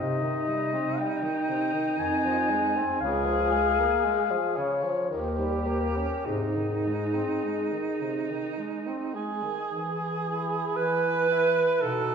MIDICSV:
0, 0, Header, 1, 5, 480
1, 0, Start_track
1, 0, Key_signature, -4, "major"
1, 0, Tempo, 1013514
1, 1421, Time_signature, 3, 2, 24, 8
1, 1422, Tempo, 1050788
1, 2382, Tempo, 1167315
1, 3342, Tempo, 1132075
1, 4302, Tempo, 1054482
1, 5415, End_track
2, 0, Start_track
2, 0, Title_t, "Clarinet"
2, 0, Program_c, 0, 71
2, 0, Note_on_c, 0, 75, 60
2, 465, Note_on_c, 0, 79, 77
2, 473, Note_off_c, 0, 75, 0
2, 945, Note_on_c, 0, 80, 75
2, 952, Note_off_c, 0, 79, 0
2, 1422, Note_off_c, 0, 80, 0
2, 1424, Note_on_c, 0, 77, 85
2, 2134, Note_on_c, 0, 73, 67
2, 2141, Note_off_c, 0, 77, 0
2, 2384, Note_on_c, 0, 70, 54
2, 2390, Note_off_c, 0, 73, 0
2, 2421, Note_on_c, 0, 72, 51
2, 2427, Note_off_c, 0, 70, 0
2, 2457, Note_on_c, 0, 70, 50
2, 2463, Note_off_c, 0, 72, 0
2, 2487, Note_on_c, 0, 72, 49
2, 2494, Note_off_c, 0, 70, 0
2, 2528, Note_on_c, 0, 70, 43
2, 2534, Note_off_c, 0, 72, 0
2, 2566, Note_on_c, 0, 72, 46
2, 2573, Note_off_c, 0, 70, 0
2, 2592, Note_on_c, 0, 70, 44
2, 2599, Note_off_c, 0, 72, 0
2, 2631, Note_on_c, 0, 72, 47
2, 2637, Note_off_c, 0, 70, 0
2, 2672, Note_on_c, 0, 70, 54
2, 2678, Note_off_c, 0, 72, 0
2, 2857, Note_on_c, 0, 68, 51
2, 2863, Note_off_c, 0, 70, 0
2, 3826, Note_off_c, 0, 68, 0
2, 4789, Note_on_c, 0, 80, 53
2, 5036, Note_on_c, 0, 76, 48
2, 5043, Note_off_c, 0, 80, 0
2, 5277, Note_on_c, 0, 78, 45
2, 5284, Note_off_c, 0, 76, 0
2, 5415, Note_off_c, 0, 78, 0
2, 5415, End_track
3, 0, Start_track
3, 0, Title_t, "Alto saxophone"
3, 0, Program_c, 1, 65
3, 0, Note_on_c, 1, 63, 47
3, 1343, Note_off_c, 1, 63, 0
3, 1423, Note_on_c, 1, 68, 56
3, 2233, Note_off_c, 1, 68, 0
3, 2384, Note_on_c, 1, 67, 45
3, 2857, Note_on_c, 1, 63, 45
3, 2863, Note_off_c, 1, 67, 0
3, 4064, Note_off_c, 1, 63, 0
3, 4067, Note_on_c, 1, 68, 48
3, 4783, Note_on_c, 1, 71, 70
3, 4790, Note_off_c, 1, 68, 0
3, 5262, Note_on_c, 1, 69, 66
3, 5269, Note_off_c, 1, 71, 0
3, 5415, Note_off_c, 1, 69, 0
3, 5415, End_track
4, 0, Start_track
4, 0, Title_t, "Tenor saxophone"
4, 0, Program_c, 2, 66
4, 0, Note_on_c, 2, 48, 43
4, 105, Note_on_c, 2, 51, 38
4, 112, Note_off_c, 2, 48, 0
4, 227, Note_on_c, 2, 55, 38
4, 234, Note_off_c, 2, 51, 0
4, 347, Note_on_c, 2, 60, 38
4, 354, Note_off_c, 2, 55, 0
4, 470, Note_on_c, 2, 55, 44
4, 477, Note_off_c, 2, 60, 0
4, 581, Note_on_c, 2, 51, 40
4, 588, Note_off_c, 2, 55, 0
4, 707, Note_on_c, 2, 48, 45
4, 714, Note_off_c, 2, 51, 0
4, 823, Note_on_c, 2, 51, 39
4, 830, Note_off_c, 2, 48, 0
4, 937, Note_off_c, 2, 51, 0
4, 940, Note_on_c, 2, 51, 47
4, 1065, Note_on_c, 2, 53, 49
4, 1072, Note_off_c, 2, 51, 0
4, 1184, Note_on_c, 2, 56, 46
4, 1191, Note_off_c, 2, 53, 0
4, 1309, Note_on_c, 2, 60, 43
4, 1317, Note_off_c, 2, 56, 0
4, 1424, Note_off_c, 2, 60, 0
4, 1427, Note_on_c, 2, 49, 50
4, 1538, Note_on_c, 2, 53, 45
4, 1545, Note_off_c, 2, 49, 0
4, 1660, Note_on_c, 2, 56, 41
4, 1667, Note_off_c, 2, 53, 0
4, 1780, Note_on_c, 2, 58, 45
4, 1787, Note_off_c, 2, 56, 0
4, 1898, Note_on_c, 2, 56, 53
4, 1905, Note_off_c, 2, 58, 0
4, 2018, Note_on_c, 2, 53, 47
4, 2025, Note_off_c, 2, 56, 0
4, 2140, Note_on_c, 2, 49, 47
4, 2147, Note_off_c, 2, 53, 0
4, 2260, Note_on_c, 2, 53, 42
4, 2267, Note_off_c, 2, 49, 0
4, 2383, Note_off_c, 2, 53, 0
4, 2384, Note_on_c, 2, 51, 42
4, 2498, Note_on_c, 2, 55, 40
4, 2505, Note_off_c, 2, 51, 0
4, 2614, Note_on_c, 2, 58, 38
4, 2620, Note_off_c, 2, 55, 0
4, 2736, Note_on_c, 2, 61, 34
4, 2742, Note_off_c, 2, 58, 0
4, 2857, Note_off_c, 2, 61, 0
4, 2860, Note_on_c, 2, 48, 40
4, 2981, Note_on_c, 2, 51, 35
4, 2987, Note_off_c, 2, 48, 0
4, 3104, Note_on_c, 2, 56, 33
4, 3110, Note_off_c, 2, 51, 0
4, 3220, Note_on_c, 2, 60, 31
4, 3226, Note_off_c, 2, 56, 0
4, 3343, Note_on_c, 2, 56, 33
4, 3349, Note_off_c, 2, 60, 0
4, 3463, Note_on_c, 2, 51, 29
4, 3469, Note_off_c, 2, 56, 0
4, 3588, Note_on_c, 2, 48, 32
4, 3594, Note_off_c, 2, 51, 0
4, 3708, Note_on_c, 2, 51, 29
4, 3715, Note_off_c, 2, 48, 0
4, 3826, Note_on_c, 2, 56, 30
4, 3833, Note_off_c, 2, 51, 0
4, 3948, Note_on_c, 2, 60, 31
4, 3954, Note_off_c, 2, 56, 0
4, 4065, Note_on_c, 2, 56, 29
4, 4071, Note_off_c, 2, 60, 0
4, 4185, Note_on_c, 2, 51, 28
4, 4192, Note_off_c, 2, 56, 0
4, 4300, Note_off_c, 2, 51, 0
4, 4545, Note_on_c, 2, 64, 35
4, 5017, Note_off_c, 2, 64, 0
4, 5026, Note_on_c, 2, 64, 38
4, 5259, Note_off_c, 2, 64, 0
4, 5264, Note_on_c, 2, 63, 35
4, 5415, Note_off_c, 2, 63, 0
4, 5415, End_track
5, 0, Start_track
5, 0, Title_t, "Bass clarinet"
5, 0, Program_c, 3, 71
5, 0, Note_on_c, 3, 48, 47
5, 385, Note_off_c, 3, 48, 0
5, 948, Note_on_c, 3, 41, 59
5, 1344, Note_off_c, 3, 41, 0
5, 1422, Note_on_c, 3, 37, 58
5, 1812, Note_off_c, 3, 37, 0
5, 2386, Note_on_c, 3, 39, 51
5, 2777, Note_off_c, 3, 39, 0
5, 2858, Note_on_c, 3, 44, 42
5, 3261, Note_off_c, 3, 44, 0
5, 4302, Note_on_c, 3, 52, 46
5, 4728, Note_off_c, 3, 52, 0
5, 4781, Note_on_c, 3, 52, 45
5, 5206, Note_off_c, 3, 52, 0
5, 5265, Note_on_c, 3, 47, 51
5, 5415, Note_off_c, 3, 47, 0
5, 5415, End_track
0, 0, End_of_file